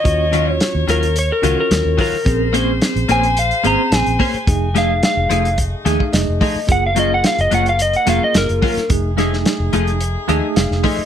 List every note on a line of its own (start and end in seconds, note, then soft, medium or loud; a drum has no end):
0.00 2.22 F#3 medium
0.00 0.25 C#4 medium
0.00 2.22 C#5 medium
0.00 0.52 D#5 loud
0.04 0.58 D#2 medium
0.04 0.25 F4 medium
0.04 0.25 F#4 medium
0.04 kick loud
0.04 closed hi-hat medium
0.31 0.50 D#3 medium
0.31 0.50 F#3 medium
0.31 1.12 C#4 medium
0.31 0.50 C#4 medium
0.31 1.12 F4 medium
0.31 0.50 F4 medium
0.31 1.12 F#4 medium
0.31 closed hi-hat medium
0.52 0.86 C#5 loud
0.61 snare loud
0.61 closed hi-hat medium
0.75 0.85 D#2 medium
0.88 1.30 D#2 medium
0.88 1.05 D#3 medium
0.88 1.05 F#3 medium
0.88 1.05 C#4 medium
0.88 1.06 F4 medium
0.88 1.16 A#4 medium
0.88 closed hi-hat medium
1.03 closed hi-hat soft
1.16 1.31 C#5 medium
1.16 closed hi-hat medium
1.32 1.58 A#4 medium
1.42 1.54 C#2 medium
1.42 1.60 D#3 medium
1.42 1.60 F#3 medium
1.42 2.03 C#4 medium
1.42 1.60 C#4 medium
1.42 2.03 F4 medium
1.42 1.61 F4 medium
1.42 2.03 F#4 medium
1.42 closed hi-hat medium
1.60 1.99 A#4 medium
1.71 1.82 D#2 loud
1.71 snare loud
1.71 closed hi-hat medium
1.85 1.95 D#2 medium
1.98 2.15 D#3 medium
1.98 2.15 F#3 medium
1.98 2.16 C#4 medium
1.98 2.16 F4 medium
1.98 2.53 A#4 medium
1.98 kick medium
1.98 open hi-hat medium
2.13 muted fingered electric bass stroke soft
2.25 2.79 A#1 loud
2.25 2.46 C4 medium
2.25 2.46 C#4 medium
2.25 6.64 G#4 medium
2.25 2.46 G#4 medium
2.25 4.45 C5 medium
2.25 kick loud
2.25 closed hi-hat medium
2.53 2.70 A#3 medium
2.53 3.33 C4 medium
2.53 3.33 C#4 medium
2.53 2.71 C#4 medium
2.53 2.71 G#4 medium
2.53 3.34 G#4 medium
2.53 2.71 C5 medium
2.53 closed hi-hat medium
2.82 snare loud
2.82 closed hi-hat medium
2.96 3.06 A#1 medium
2.96 closed hi-hat soft
3.09 3.51 A#1 medium
3.09 3.26 A#3 medium
3.09 3.26 C#4 medium
3.09 3.27 G#4 medium
3.09 3.27 C5 medium
3.09 3.37 G#5 loud
3.09 closed hi-hat medium
3.23 closed hi-hat soft
3.37 3.65 F5 medium
3.37 closed hi-hat medium
3.51 closed hi-hat soft
3.64 3.75 G#1 medium
3.64 3.81 A#3 medium
3.64 4.24 C4 medium
3.64 4.24 C#4 medium
3.64 3.81 C#4 medium
3.64 4.24 G#4 medium
3.64 3.82 G#4 medium
3.64 3.82 C5 medium
3.64 3.96 A#5 medium
3.64 closed hi-hat medium
3.92 4.03 A#1 loud
3.92 4.74 G#5 medium
3.92 snare loud
3.92 closed hi-hat medium
4.06 4.17 A#1 medium
4.06 closed hi-hat soft
4.19 4.36 A#3 medium
4.19 4.37 C#4 medium
4.19 4.37 G#4 medium
4.19 4.37 C5 medium
4.19 kick medium
4.19 open hi-hat medium
4.34 muted fingered electric bass stroke soft
4.34 closed hi-hat soft
4.47 5.01 F1 loud
4.47 4.67 A3 medium
4.47 6.66 A3 medium
4.47 6.66 D#4 medium
4.47 4.68 D#4 medium
4.47 4.68 G#4 medium
4.47 kick loud
4.47 closed hi-hat medium
4.74 4.92 F3 medium
4.74 5.54 A3 medium
4.74 4.92 A3 medium
4.74 5.55 D#4 medium
4.74 4.92 D#4 medium
4.74 5.55 G#4 medium
4.74 4.93 G#4 medium
4.74 snare soft
4.74 closed hi-hat medium
4.78 5.03 F5 medium
5.03 5.57 F5 loud
5.03 snare loud
5.03 closed hi-hat medium
5.17 5.27 F1 medium
5.30 5.73 F1 medium
5.30 5.47 F3 medium
5.30 5.47 A3 medium
5.30 5.48 D#4 medium
5.30 5.48 G#4 medium
5.30 closed hi-hat medium
5.45 closed hi-hat soft
5.58 kick medium
5.58 closed hi-hat medium
5.85 5.97 D#2 medium
5.85 6.02 F3 medium
5.85 6.45 A3 medium
5.85 6.03 A3 medium
5.85 6.46 D#4 medium
5.85 6.03 D#4 medium
5.85 6.46 G#4 medium
5.85 6.03 G#4 loud
5.85 5.99 G#5 medium
5.85 snare soft
5.85 closed hi-hat medium
6.00 6.12 F5 medium
6.00 kick medium
6.13 6.24 F1 loud
6.13 6.39 D#5 medium
6.13 snare loud
6.13 closed hi-hat medium
6.28 6.38 F1 medium
6.41 6.58 F3 medium
6.41 6.58 A3 medium
6.41 6.59 D#4 loud
6.41 6.59 G#4 loud
6.41 6.67 D#5 medium
6.41 kick medium
6.41 open hi-hat medium
6.56 muted fingered electric bass stroke soft
6.67 7.22 F#1 medium
6.67 6.88 A#3 medium
6.67 8.87 A#3 medium
6.67 6.88 F4 medium
6.67 8.87 F4 medium
6.67 6.89 G#4 medium
6.67 kick loud
6.67 closed hi-hat medium
6.72 6.84 F#5 loud
6.86 6.98 F5 medium
6.95 7.13 F#3 medium
6.95 7.76 A#3 medium
6.95 7.13 A#3 medium
6.95 7.14 C#4 medium
6.95 7.76 F4 medium
6.95 7.14 F4 medium
6.95 7.76 G#4 medium
6.95 closed hi-hat medium
6.99 7.12 D#5 medium
7.14 7.25 F#5 loud
7.24 7.39 F5 medium
7.24 snare loud
7.24 closed hi-hat medium
7.39 7.49 F#1 medium
7.39 7.52 D#5 medium
7.39 closed hi-hat soft
7.51 7.94 F#1 medium
7.51 7.68 F#3 medium
7.51 7.69 A#3 medium
7.51 7.69 C#4 medium
7.51 7.69 F4 medium
7.51 7.67 F#5 medium
7.51 closed hi-hat medium
7.66 7.80 F5 medium
7.66 closed hi-hat soft
7.79 7.95 D#5 medium
7.79 closed hi-hat medium
7.93 8.08 F#5 medium
7.93 closed hi-hat soft
8.06 8.18 F1 medium
8.06 8.24 F#3 medium
8.06 8.67 A#3 medium
8.06 8.24 A#3 medium
8.06 8.24 C#4 medium
8.06 8.67 F4 medium
8.06 8.25 F4 medium
8.06 8.67 G#4 medium
8.06 8.22 F5 loud
8.06 snare soft
8.06 closed hi-hat medium
8.24 8.36 D#5 medium
8.34 8.46 F#1 loud
8.34 8.90 A#4 medium
8.34 snare loud
8.34 closed hi-hat medium
8.49 8.59 F#1 medium
8.49 closed hi-hat soft
8.62 8.79 F#3 medium
8.62 8.79 A#3 medium
8.62 8.80 C#4 medium
8.62 8.80 F4 medium
8.62 kick medium
8.62 open hi-hat medium
8.77 muted fingered electric bass stroke soft
8.77 snare soft
8.77 closed hi-hat soft
8.89 9.43 F1 loud
8.89 9.10 A3 medium
8.89 11.05 A3 medium
8.89 9.10 D#4 medium
8.89 11.05 D#4 medium
8.89 11.05 G#4 medium
8.89 9.11 G#4 medium
8.89 kick loud
8.89 closed hi-hat medium
9.17 9.35 F3 medium
9.17 9.97 A3 medium
9.17 9.35 A3 medium
9.17 9.98 D#4 medium
9.17 9.35 D#4 medium
9.17 9.98 G#4 medium
9.17 9.36 G#4 loud
9.17 snare soft
9.17 closed hi-hat medium
9.33 snare soft
9.46 snare loud
9.46 closed hi-hat medium
9.60 9.70 F1 medium
9.73 10.16 F1 medium
9.73 9.90 F3 medium
9.73 9.90 A3 loud
9.73 9.91 D#4 loud
9.73 9.91 G#4 loud
9.73 closed hi-hat medium
9.87 closed hi-hat soft
10.01 closed hi-hat medium
10.28 10.40 D#2 medium
10.28 10.45 F3 medium
10.28 10.88 A3 medium
10.28 10.46 A3 medium
10.28 10.89 D#4 medium
10.28 10.46 D#4 medium
10.28 10.89 G#4 loud
10.28 10.46 G#4 medium
10.28 10.54 A5 medium
10.28 closed hi-hat medium
10.56 10.67 F1 loud
10.56 10.82 F5 medium
10.56 snare loud
10.56 closed hi-hat medium
10.71 10.81 F1 medium
10.71 snare soft
10.84 11.01 F3 loud
10.84 11.01 A3 medium
10.84 11.01 D#4 medium
10.84 11.02 G#4 loud
10.84 11.05 D#5 medium
10.84 kick medium
10.84 open hi-hat medium
10.99 muted fingered electric bass stroke soft